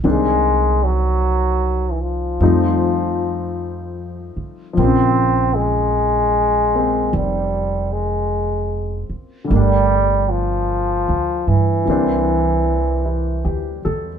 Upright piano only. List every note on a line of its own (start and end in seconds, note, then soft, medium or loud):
0.04 2.41 D#3 soft
0.04 2.41 A#3 soft
0.04 2.41 C4 soft
0.04 2.41 D4 soft
2.42 4.72 F3 soft
2.42 4.78 G3 soft
2.42 4.78 A3 soft
2.42 4.78 C4 soft
2.42 4.78 D#4 soft
4.73 9.49 F3 soft
4.79 6.73 A#3 soft
4.79 6.74 C4 soft
4.84 9.54 C#3 medium
6.75 9.51 A#3 soft
6.75 9.51 C4 soft
9.44 11.84 D3 soft
9.44 11.85 G3 soft
9.50 11.87 A3 soft
9.50 11.87 A#3 soft
9.56 11.89 D4 soft
11.85 14.19 E3 soft
11.85 14.19 G3 soft
11.85 14.19 A#3 soft
11.90 14.19 C4 soft
11.90 14.19 D4 soft
13.05 13.79 E4 soft
13.45 14.06 G4 soft
13.85 14.19 A4 soft